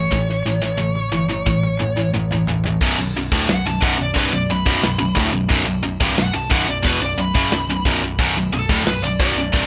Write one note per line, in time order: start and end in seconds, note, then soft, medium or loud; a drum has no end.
0.00 0.10 A2 medium
0.00 0.10 E3 medium
0.00 2.10 C#5 medium
0.11 0.44 A1 medium
0.11 0.42 A2 medium
0.11 0.42 E3 medium
0.11 kick loud
0.11 snare medium
0.29 snare soft
0.45 0.77 A1 medium
0.45 0.61 A2 medium
0.45 0.61 E3 medium
0.45 snare medium
0.62 0.77 A2 medium
0.62 0.77 E3 medium
0.62 snare medium
0.78 1.11 A1 medium
0.78 1.09 A2 medium
0.78 1.09 E3 medium
0.78 high tom medium
0.95 high tom medium
1.12 1.44 G1 medium
1.12 1.29 A2 medium
1.12 1.28 E3 medium
1.12 high tom medium
1.29 1.45 A2 medium
1.29 1.45 E3 medium
1.29 mid tom medium
1.46 1.78 A1 medium
1.46 1.76 A2 medium
1.46 1.77 E3 medium
1.46 kick loud
1.46 mid tom medium
1.63 mid tom medium
1.79 2.12 A1 medium
1.79 1.96 A2 medium
1.79 1.96 E3 medium
1.79 mid tom medium
1.96 2.12 A2 medium
1.96 2.13 E3 medium
1.96 mid tom medium
2.13 2.45 A1 medium
2.13 2.30 A2 medium
2.13 2.31 E3 medium
2.13 mid tom medium
2.31 2.48 A2 medium
2.31 2.47 E3 medium
2.31 floor tom medium
2.47 2.79 A1 medium
2.47 2.65 A2 medium
2.47 2.65 E3 medium
2.47 floor tom medium
2.64 2.81 A2 medium
2.64 2.82 E3 medium
2.64 floor tom medium
2.81 2.97 B0 loud
2.81 2.97 B1 loud
2.81 2.98 F#2 loud
2.81 kick loud
2.81 crash loud
2.81 crash medium
2.98 3.14 B0 medium
2.98 3.15 B1 medium
2.98 3.15 F#2 medium
3.16 3.31 B0 medium
3.16 3.31 B1 medium
3.16 3.32 F#2 medium
3.32 3.47 D1 medium
3.32 3.47 D2 medium
3.32 3.48 A2 loud
3.32 kick loud
3.48 3.64 B0 medium
3.48 3.65 B1 medium
3.48 3.65 F#2 medium
3.48 3.65 F#5 loud
3.48 snare loud
3.48 crash medium
3.65 3.81 B0 medium
3.65 3.80 B1 medium
3.65 3.81 F#2 medium
3.65 3.84 A5 loud
3.81 3.98 B0 loud
3.81 3.96 B1 medium
3.81 3.98 F#2 loud
3.81 3.99 F#5 medium
3.81 kick loud
3.98 4.14 B0 medium
3.98 4.14 B1 medium
3.98 4.15 F#2 medium
3.98 4.16 D5 medium
4.14 4.31 C1 loud
4.14 4.30 C2 medium
4.14 4.31 G2 loud
4.14 4.33 B4 medium
4.14 kick loud
4.14 crash medium
4.32 4.48 B0 medium
4.32 4.49 B1 medium
4.32 4.49 F#2 medium
4.32 4.49 D5 medium
4.50 4.65 B0 medium
4.50 4.65 B1 medium
4.50 4.65 F#2 medium
4.50 5.15 B5 loud
4.66 4.81 B0 medium
4.66 4.81 B1 medium
4.66 4.82 F#2 medium
4.66 kick loud
4.83 4.98 B0 medium
4.83 4.97 B1 medium
4.83 4.98 F#2 medium
4.83 snare loud
4.83 crash medium
4.98 5.15 B0 medium
4.98 5.14 B1 medium
4.98 5.16 F#2 medium
5.15 5.32 D1 loud
5.15 5.31 D2 medium
5.15 5.32 A2 loud
5.15 kick loud
5.32 5.48 B0 medium
5.32 5.48 B1 medium
5.32 5.49 F#2 medium
5.49 5.64 B0 medium
5.49 5.65 B1 loud
5.49 5.65 F#2 loud
5.49 kick loud
5.49 crash medium
5.65 5.81 B0 medium
5.65 5.82 B1 medium
5.65 5.82 F#2 medium
5.83 5.98 B0 medium
5.83 6.00 B1 medium
5.83 6.00 F#2 medium
6.00 6.16 C1 loud
6.00 6.16 C2 medium
6.00 6.16 G2 loud
6.00 kick loud
6.17 6.32 B0 medium
6.17 6.32 B1 medium
6.17 6.32 F#2 medium
6.17 6.34 F#5 loud
6.17 snare loud
6.17 crash medium
6.33 6.49 B0 medium
6.33 6.49 B1 medium
6.33 6.49 F#2 medium
6.33 6.50 A5 medium
6.50 6.66 B0 medium
6.50 6.66 B1 loud
6.50 6.66 F#2 loud
6.50 6.67 F#5 loud
6.50 kick loud
6.67 6.83 B0 medium
6.67 6.82 B1 medium
6.67 6.83 F#2 medium
6.67 6.84 D5 medium
6.83 7.00 E1 medium
6.83 6.99 E2 medium
6.83 6.99 B2 loud
6.83 7.01 B4 medium
6.83 kick loud
6.83 crash medium
7.00 7.15 B0 medium
7.00 7.17 B1 medium
7.00 7.17 F#2 medium
7.00 7.18 D5 medium
7.16 7.32 B0 medium
7.16 7.34 B1 medium
7.16 7.34 F#2 medium
7.21 7.84 B5 loud
7.35 7.50 F#1 loud
7.35 7.50 F#2 medium
7.35 7.51 C#3 loud
7.35 kick loud
7.51 7.66 B0 medium
7.51 7.68 B1 medium
7.51 7.69 F#2 medium
7.51 snare loud
7.51 crash medium
7.66 7.82 B0 medium
7.66 7.85 B1 medium
7.70 7.85 F#2 medium
7.85 8.00 B0 loud
7.85 8.01 B1 medium
7.85 8.01 F#2 loud
7.85 kick loud
8.01 8.17 B0 medium
8.01 8.18 B1 medium
8.01 8.19 F#2 medium
8.18 8.34 B0 medium
8.18 8.34 B1 loud
8.18 8.35 F#2 loud
8.18 kick loud
8.18 crash medium
8.34 8.50 B0 medium
8.34 8.52 B1 medium
8.34 8.52 F#2 medium
8.50 8.66 B0 medium
8.50 8.69 B1 medium
8.50 8.69 F#2 medium
8.50 8.85 A4 loud
8.69 8.83 D1 medium
8.69 8.85 D2 medium
8.69 8.85 A2 loud
8.69 kick loud
8.84 8.99 B0 medium
8.84 9.02 B1 medium
8.84 9.02 F#2 medium
8.84 9.02 B4 medium
8.84 snare loud
8.84 crash medium
9.00 9.16 B0 medium
9.00 9.18 B1 medium
9.00 9.19 D5 loud
9.04 9.20 F#2 medium
9.20 9.33 B0 loud
9.20 9.35 B1 medium
9.20 9.36 F#2 loud
9.20 9.66 D5 loud
9.20 kick loud
9.34 9.50 B0 medium
9.34 9.52 B1 medium
9.38 9.53 F#2 medium
9.52 9.66 C1 loud
9.52 9.66 C2 medium
9.52 9.66 G2 loud
9.52 kick loud
9.52 crash medium